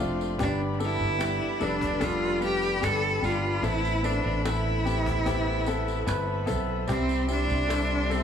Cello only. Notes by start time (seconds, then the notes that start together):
0.43 D4
0.84 E4
1.63 D4
2.04 F4
2.44 G4
2.83 A4
3.24 F4
3.64 E4
4.04 D4
4.45 E4
6.90 C4
7.32 D4
8.12 C4